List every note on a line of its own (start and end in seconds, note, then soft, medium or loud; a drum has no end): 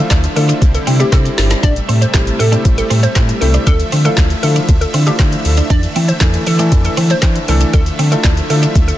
0.00 1.61 D3 medium
0.00 0.17 F3 medium
0.00 0.61 F3 medium
0.00 0.18 A3 medium
0.00 0.58 A3 medium
0.00 0.18 D4 medium
0.00 0.18 E4 medium
0.00 0.18 F4 medium
0.00 0.58 E5 medium
0.10 0.27 D2 loud
0.10 0.20 D4 medium
0.10 kick loud
0.10 snare medium
0.10 clap loud
0.10 clap medium
0.10 closed hi-hat medium
0.10 shaker medium
0.24 closed hi-hat medium
0.24 shaker medium
0.36 0.53 D3 loud
0.36 0.62 F3 medium
0.36 0.62 A3 medium
0.36 0.62 D4 medium
0.36 0.62 E4 medium
0.36 0.62 F4 medium
0.36 0.58 A4 medium
0.36 muted clean electric guitar stroke soft
0.36 open hi-hat medium
0.36 shaker medium
0.49 0.58 D4 medium
0.49 closed hi-hat medium
0.49 shaker medium
0.61 0.78 C2 loud
0.61 1.62 G3 medium
0.61 1.62 C4 medium
0.61 1.62 E4 medium
0.61 muted clean electric guitar stroke soft
0.61 kick loud
0.61 closed hi-hat medium
0.61 shaker medium
0.74 0.85 A4 medium
0.74 closed hi-hat medium
0.74 shaker medium
0.87 1.04 C3 loud
0.87 0.96 C4 medium
0.87 0.93 E4 medium
0.87 0.94 G4 medium
0.87 open hi-hat medium
0.87 shaker medium
0.99 1.51 G3 medium
0.99 1.08 A3 medium
0.99 1.52 C4 medium
0.99 1.52 D4 medium
0.99 1.52 E4 medium
0.99 1.11 G4 medium
0.99 1.52 G4 medium
0.99 closed hi-hat medium
0.99 shaker medium
1.12 1.29 C3 loud
1.12 1.21 C4 medium
1.12 1.48 A4 medium
1.12 kick loud
1.12 snare medium
1.12 clap loud
1.12 closed hi-hat medium
1.12 shaker medium
1.25 muted clean electric guitar stroke soft
1.25 closed hi-hat medium
1.25 shaker medium
1.38 1.55 G1 loud
1.38 snare loud
1.38 open hi-hat medium
1.38 shaker medium
1.51 1.59 D4 medium
1.51 snare loud
1.51 closed hi-hat medium
1.51 shaker medium
1.63 1.80 A1 loud
1.63 3.65 C3 medium
1.63 3.65 G3 medium
1.63 3.65 A3 medium
1.63 1.72 D4 loud
1.63 1.74 D5 loud
1.63 7.70 E5 medium
1.63 kick loud
1.63 closed hi-hat loud
1.63 shaker loud
1.76 closed hi-hat soft
1.76 shaker medium
1.89 2.06 A2 loud
1.89 1.97 C4 medium
1.89 open hi-hat medium
1.89 shaker medium
2.01 2.12 C5 medium
2.01 muted clean electric guitar stroke medium
2.01 closed hi-hat medium
2.01 shaker medium
2.14 2.31 A1 loud
2.14 2.34 G3 medium
2.14 2.34 A3 medium
2.14 2.34 C4 medium
2.14 2.23 D4 medium
2.14 2.34 E4 medium
2.14 2.34 G4 medium
2.14 kick loud
2.14 snare medium
2.14 clap medium
2.14 clap loud
2.14 closed hi-hat medium
2.14 shaker medium
2.27 closed hi-hat medium
2.27 shaker medium
2.39 2.56 A2 loud
2.39 2.61 A4 medium
2.39 muted clean electric guitar stroke soft
2.39 open hi-hat medium
2.39 shaker medium
2.52 2.85 G3 medium
2.52 2.85 A3 medium
2.52 2.85 C4 medium
2.52 2.61 D4 medium
2.52 2.85 E4 medium
2.52 2.85 G4 medium
2.52 closed hi-hat medium
2.52 shaker medium
2.65 2.82 A1 loud
2.65 muted clean electric guitar stroke soft
2.65 kick loud
2.65 closed hi-hat medium
2.65 shaker medium
2.78 2.89 A4 medium
2.78 closed hi-hat medium
2.78 shaker medium
2.90 3.07 A2 loud
2.90 2.99 C4 medium
2.90 open hi-hat medium
2.90 shaker medium
3.03 3.12 A3 medium
3.03 3.14 C5 medium
3.03 closed hi-hat medium
3.03 shaker medium
3.15 3.33 A2 loud
3.15 3.29 G3 medium
3.15 3.29 A3 medium
3.15 3.25 C4 medium
3.15 3.29 C4 medium
3.15 3.29 E4 medium
3.15 3.29 G4 medium
3.15 kick loud
3.15 snare loud
3.15 clap loud
3.15 closed hi-hat medium
3.15 shaker medium
3.29 muted clean electric guitar stroke soft
3.29 closed hi-hat medium
3.29 shaker medium
3.41 3.58 C2 loud
3.41 3.67 G3 medium
3.41 3.67 A3 medium
3.41 3.67 C4 medium
3.41 3.67 E4 medium
3.41 3.67 G4 loud
3.41 3.52 A4 medium
3.41 open hi-hat medium
3.41 shaker medium
3.54 3.63 D4 medium
3.54 closed hi-hat medium
3.54 shaker medium
3.67 3.83 D2 loud
3.67 8.98 D3 medium
3.67 5.68 F3 medium
3.67 8.98 A3 medium
3.67 3.76 D4 loud
3.67 3.78 A4 loud
3.67 kick loud
3.67 closed hi-hat loud
3.67 shaker loud
3.80 closed hi-hat soft
3.80 shaker soft
3.92 4.09 D3 loud
3.92 4.01 C4 medium
3.92 open hi-hat medium
3.92 shaker medium
4.05 4.24 F3 medium
4.05 4.24 A3 medium
4.05 4.24 D4 medium
4.05 4.25 E4 medium
4.05 4.25 F4 medium
4.05 4.16 A4 medium
4.05 muted clean electric guitar stroke soft
4.05 closed hi-hat medium
4.05 shaker medium
4.17 4.34 D2 loud
4.17 4.26 D4 medium
4.17 kick loud
4.17 snare medium
4.17 clap loud
4.17 clap medium
4.17 closed hi-hat medium
4.17 shaker medium
4.30 closed hi-hat medium
4.30 shaker medium
4.43 4.60 D3 loud
4.43 4.69 F3 medium
4.43 4.69 A3 medium
4.43 4.69 D4 medium
4.43 4.69 E4 medium
4.43 4.69 F4 medium
4.43 4.65 A4 medium
4.43 muted clean electric guitar stroke soft
4.43 open hi-hat medium
4.43 shaker medium
4.56 4.65 D4 medium
4.56 closed hi-hat medium
4.56 shaker medium
4.69 4.85 D2 loud
4.69 muted clean electric guitar stroke soft
4.69 kick loud
4.69 closed hi-hat medium
4.69 shaker medium
4.81 4.92 A4 medium
4.81 closed hi-hat medium
4.81 shaker soft
4.94 5.11 D3 loud
4.94 5.03 C4 medium
4.94 5.00 E4 medium
4.94 5.00 F4 medium
4.94 open hi-hat medium
4.94 shaker medium
5.07 5.58 F3 medium
5.07 5.58 A3 medium
5.07 5.15 A3 medium
5.07 5.58 D4 medium
5.07 5.59 E4 medium
5.07 5.59 F4 medium
5.07 5.17 G4 medium
5.07 closed hi-hat medium
5.07 shaker medium
5.19 5.36 D3 loud
5.19 5.28 C4 medium
5.19 kick loud
5.19 snare loud
5.19 clap loud
5.19 closed hi-hat medium
5.19 shaker medium
5.32 muted clean electric guitar stroke soft
5.32 closed hi-hat medium
5.32 shaker medium
5.45 5.61 D2 medium
5.45 open hi-hat medium
5.45 shaker medium
5.57 5.66 D4 medium
5.57 closed hi-hat medium
5.57 shaker medium
5.70 5.87 E2 loud
5.70 7.72 E3 medium
5.70 5.79 D4 medium
5.70 5.81 D5 loud
5.70 kick loud
5.70 closed hi-hat loud
5.70 shaker loud
5.83 closed hi-hat soft
5.83 shaker soft
5.96 6.12 E3 loud
5.96 6.05 C4 medium
5.96 open hi-hat medium
5.96 shaker medium
6.08 6.19 C5 medium
6.08 muted clean electric guitar stroke soft
6.08 closed hi-hat medium
6.08 shaker medium
6.20 6.38 E2 loud
6.20 6.40 E3 medium
6.20 6.40 A3 medium
6.20 6.30 D4 medium
6.20 6.41 D4 medium
6.20 6.41 E4 medium
6.20 6.41 A4 medium
6.20 kick loud
6.20 snare medium
6.20 clap loud
6.20 clap medium
6.20 closed hi-hat medium
6.20 shaker medium
6.34 closed hi-hat medium
6.34 shaker medium
6.47 6.74 E3 loud
6.47 6.68 A4 medium
6.47 muted clean electric guitar stroke soft
6.47 open hi-hat medium
6.47 shaker medium
6.59 6.91 E3 medium
6.59 6.92 A3 medium
6.59 6.68 D4 medium
6.59 6.92 D4 medium
6.59 6.92 E4 medium
6.59 6.92 A4 medium
6.59 closed hi-hat medium
6.59 shaker medium
6.72 6.89 E2 loud
6.72 muted clean electric guitar stroke soft
6.72 kick loud
6.72 closed hi-hat medium
6.72 shaker medium
6.85 6.96 A4 medium
6.85 closed hi-hat medium
6.85 shaker medium
6.97 7.14 E3 loud
6.97 7.06 C4 medium
6.97 open hi-hat medium
6.97 shaker medium
7.10 7.19 A3 medium
7.10 7.21 C5 medium
7.10 closed hi-hat medium
7.10 shaker medium
7.22 7.39 E3 loud
7.22 7.36 E3 medium
7.22 7.36 A3 medium
7.22 7.31 C4 medium
7.22 7.36 D4 medium
7.22 7.36 E4 medium
7.22 7.36 C5 medium
7.22 kick loud
7.22 snare medium
7.22 clap loud
7.22 closed hi-hat medium
7.22 shaker medium
7.35 muted clean electric guitar stroke soft
7.35 closed hi-hat medium
7.35 shaker medium
7.48 7.65 C2 loud
7.48 7.74 E3 medium
7.48 7.74 A3 medium
7.48 7.74 D4 medium
7.48 7.74 E4 medium
7.48 7.59 A4 medium
7.48 7.74 A4 medium
7.48 open hi-hat medium
7.48 shaker medium
7.61 7.70 D4 medium
7.61 closed hi-hat medium
7.61 shaker medium
7.74 7.90 D2 loud
7.74 8.98 F3 medium
7.74 7.82 D4 medium
7.74 7.84 A4 loud
7.74 8.98 E5 medium
7.74 kick loud
7.74 closed hi-hat loud
7.74 shaker medium
7.86 closed hi-hat soft
7.86 shaker soft
7.99 8.16 D3 loud
7.99 8.08 C4 medium
7.99 open hi-hat medium
7.99 shaker medium
8.11 8.31 A3 medium
8.11 8.31 D4 medium
8.11 8.31 E4 medium
8.11 8.31 F4 medium
8.11 8.23 A4 medium
8.11 8.31 A4 medium
8.11 muted clean electric guitar stroke medium
8.11 closed hi-hat medium
8.11 shaker medium
8.24 8.41 D2 loud
8.24 8.33 D4 medium
8.24 kick loud
8.24 snare medium
8.24 clap loud
8.24 clap medium
8.24 closed hi-hat medium
8.24 shaker medium
8.37 closed hi-hat medium
8.37 shaker medium
8.50 8.67 D3 loud
8.50 8.76 A3 medium
8.50 8.76 D4 medium
8.50 8.76 E4 medium
8.50 8.76 F4 medium
8.50 8.72 A4 medium
8.50 8.76 A4 medium
8.50 muted clean electric guitar stroke soft
8.50 open hi-hat medium
8.50 shaker medium
8.63 8.71 D4 medium
8.63 closed hi-hat medium
8.63 shaker medium
8.75 8.92 D2 loud
8.75 muted clean electric guitar stroke soft
8.75 kick loud
8.75 closed hi-hat medium
8.75 shaker medium
8.88 8.98 A4 medium
8.88 closed hi-hat medium
8.88 shaker medium